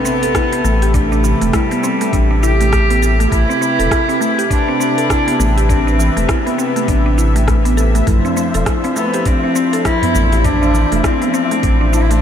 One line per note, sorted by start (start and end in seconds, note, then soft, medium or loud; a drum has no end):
0.00 3.28 C3 medium
0.00 0.96 B3 loud
0.00 8.03 G4 medium
0.00 3.28 A4 medium
0.00 12.22 E5 medium
0.00 impact medium
0.05 0.22 C4 medium
0.05 cabasa medium
0.23 0.30 A4 medium
0.23 open hi-hat soft
0.23 cabasa soft
0.35 0.45 E4 loud
0.35 kick loud
0.35 cross-stick loud
0.35 open hi-hat medium
0.35 cabasa soft
0.53 0.64 B3 medium
0.53 open hi-hat medium
0.64 1.34 A1 medium
0.64 0.80 A3 medium
0.64 cabasa medium
0.82 0.93 G4 medium
0.82 open hi-hat soft
0.82 cabasa soft
0.94 1.55 A3 loud
0.94 1.11 D4 medium
0.94 kick loud
0.94 open hi-hat medium
0.94 cabasa soft
1.12 1.23 D4 medium
1.12 cabasa soft
1.24 1.40 E3 medium
1.24 cabasa medium
1.42 1.50 E1 loud
1.42 1.53 A3 medium
1.42 open hi-hat soft
1.42 cabasa soft
1.53 2.42 G3 loud
1.53 1.64 E4 loud
1.53 kick loud
1.53 cross-stick loud
1.53 open hi-hat medium
1.53 cabasa soft
1.71 1.83 B3 medium
1.71 open hi-hat soft
1.71 cabasa soft
1.84 1.99 C4 medium
1.84 cabasa medium
2.01 2.12 A3 medium
2.01 open hi-hat soft
2.01 cabasa soft
2.13 3.27 A1 medium
2.13 2.29 D4 medium
2.13 kick loud
2.13 open hi-hat medium
2.13 cabasa soft
2.31 2.42 D4 medium
2.43 2.53 E4 medium
2.43 3.28 G4 loud
2.43 cabasa medium
2.61 2.67 A3 medium
2.61 open hi-hat soft
2.61 cabasa soft
2.72 2.89 A3 medium
2.72 kick loud
2.72 cross-stick loud
2.72 open hi-hat medium
2.72 cabasa soft
2.90 3.02 B3 medium
2.90 open hi-hat soft
3.02 3.18 A4 medium
3.02 cabasa medium
3.20 3.31 A3 medium
3.20 open hi-hat soft
3.20 cabasa soft
3.32 3.45 A1 loud
3.32 8.03 C3 medium
3.32 3.49 A3 medium
3.32 4.47 E4 loud
3.32 8.03 B4 medium
3.32 kick loud
3.32 open hi-hat medium
3.32 cabasa medium
3.49 3.60 C4 medium
3.49 cabasa soft
3.61 3.78 C4 medium
3.61 cabasa medium
3.79 3.88 E1 medium
3.79 3.86 A4 medium
3.79 open hi-hat soft
3.79 cabasa soft
3.91 4.07 E4 medium
3.91 kick loud
3.91 cross-stick loud
3.91 open hi-hat medium
3.91 cabasa medium
4.09 4.16 C4 medium
4.09 open hi-hat soft
4.09 cabasa soft
4.21 4.38 A3 medium
4.21 cabasa medium
4.38 4.49 G4 medium
4.38 open hi-hat soft
4.38 cabasa soft
4.50 4.67 D4 medium
4.50 5.66 D4 loud
4.50 kick loud
4.50 open hi-hat medium
4.50 cabasa soft
4.68 4.79 C4 medium
4.80 4.97 C4 medium
4.80 cabasa medium
4.98 5.05 A4 medium
4.98 open hi-hat soft
4.98 cabasa soft
5.10 5.20 E4 loud
5.10 kick loud
5.10 cross-stick loud
5.10 open hi-hat medium
5.10 cabasa soft
5.28 5.39 B3 medium
5.28 open hi-hat medium
5.40 6.09 A1 medium
5.40 5.56 A3 medium
5.40 cabasa medium
5.57 5.68 G4 medium
5.57 open hi-hat soft
5.57 cabasa soft
5.69 6.24 C4 loud
5.69 5.86 D4 medium
5.69 kick loud
5.69 open hi-hat medium
5.69 cabasa soft
5.87 5.99 D4 medium
5.87 cabasa soft
5.99 6.15 E3 medium
5.99 cabasa medium
6.17 6.26 E1 medium
6.17 6.28 A3 medium
6.17 open hi-hat soft
6.17 cabasa soft
6.24 6.31 C4 medium
6.29 7.78 B3 medium
6.29 6.39 E4 loud
6.29 kick loud
6.29 cross-stick loud
6.29 open hi-hat medium
6.29 cabasa soft
6.46 6.58 B3 medium
6.46 open hi-hat soft
6.46 cabasa soft
6.58 6.74 C4 medium
6.58 cabasa medium
6.76 6.88 A3 medium
6.76 open hi-hat soft
6.76 cabasa soft
6.88 8.02 A1 medium
6.88 7.05 D4 medium
6.88 kick loud
6.88 open hi-hat medium
6.88 cabasa soft
7.06 7.17 D4 medium
7.18 7.28 E4 medium
7.18 cabasa medium
7.36 7.43 A3 medium
7.36 open hi-hat soft
7.36 cabasa soft
7.48 7.64 A3 medium
7.48 kick loud
7.48 cross-stick medium
7.48 open hi-hat medium
7.48 cabasa soft
7.65 7.77 B3 medium
7.65 open hi-hat soft
7.65 cabasa soft
7.77 7.93 A4 medium
7.77 cabasa medium
7.95 8.06 A3 medium
7.95 open hi-hat soft
7.95 cabasa soft
8.07 8.20 A1 medium
8.07 12.22 F3 medium
8.07 8.24 A3 medium
8.07 12.22 D4 medium
8.07 12.22 E4 medium
8.07 12.22 C5 medium
8.07 kick loud
8.07 open hi-hat medium
8.07 tabla ge medium
8.07 cabasa soft
8.25 8.36 C4 medium
8.25 tabla na medium
8.25 cabasa soft
8.37 8.54 C4 medium
8.37 tabla na medium
8.37 tabla tin soft
8.37 cabasa medium
8.54 8.63 E1 medium
8.54 8.61 A4 medium
8.54 open hi-hat soft
8.54 tabla na medium
8.54 cabasa soft
8.66 8.82 E4 medium
8.66 kick loud
8.66 cross-stick loud
8.66 open hi-hat medium
8.66 cabasa soft
8.84 8.91 C4 medium
8.84 open hi-hat soft
8.84 tabla na medium
8.84 cabasa soft
8.96 9.13 A3 medium
8.96 9.28 B3 loud
8.96 cabasa medium
9.14 9.25 G4 medium
9.14 open hi-hat soft
9.14 cabasa soft
9.26 9.87 C4 loud
9.26 9.43 D4 medium
9.26 kick loud
9.26 open hi-hat medium
9.26 cabasa soft
9.44 9.54 C4 medium
9.56 9.72 C4 medium
9.56 cabasa medium
9.72 9.80 A4 medium
9.72 open hi-hat soft
9.72 tabla tin medium
9.72 cabasa soft
9.85 9.95 E4 loud
9.85 10.46 E4 loud
9.85 kick loud
9.85 cross-stick loud
9.85 open hi-hat medium
9.85 cabasa soft
10.02 10.14 B3 medium
10.02 open hi-hat medium
10.02 tabla tin soft
10.02 tabla ge medium
10.15 10.85 A1 medium
10.15 10.31 A3 medium
10.15 cabasa medium
10.32 10.43 G4 medium
10.32 open hi-hat soft
10.32 tabla tin medium
10.32 cabasa soft
10.44 11.04 D4 loud
10.44 10.61 D4 medium
10.44 kick loud
10.44 open hi-hat medium
10.44 tabla ge loud
10.44 cabasa soft
10.62 10.74 D4 medium
10.62 tabla na medium
10.62 cabasa soft
10.73 10.90 E3 medium
10.73 tabla na medium
10.73 tabla tin medium
10.73 cabasa medium
10.92 11.01 E1 medium
10.92 11.04 A3 medium
10.92 open hi-hat soft
10.92 tabla na medium
10.92 cabasa soft
11.04 11.95 C4 loud
11.04 11.14 E4 loud
11.04 kick loud
11.04 cross-stick loud
11.04 open hi-hat medium
11.04 cabasa soft
11.22 11.33 B3 medium
11.22 open hi-hat soft
11.22 tabla na medium
11.22 cabasa soft
11.34 11.50 C4 medium
11.34 cabasa medium
11.51 11.63 A3 medium
11.51 open hi-hat soft
11.51 tabla tin soft
11.51 cabasa soft
11.63 12.22 A1 medium
11.63 11.80 D4 medium
11.63 kick loud
11.63 open hi-hat medium
11.63 cabasa soft
11.81 11.92 D4 medium
11.93 12.03 D4 loud
11.93 12.03 E4 medium
11.93 tabla tin medium
11.93 cabasa medium
12.02 12.12 E4 medium
12.10 12.18 A3 medium
12.10 12.22 D4 loud
12.10 open hi-hat soft
12.10 tabla tin medium
12.10 cabasa soft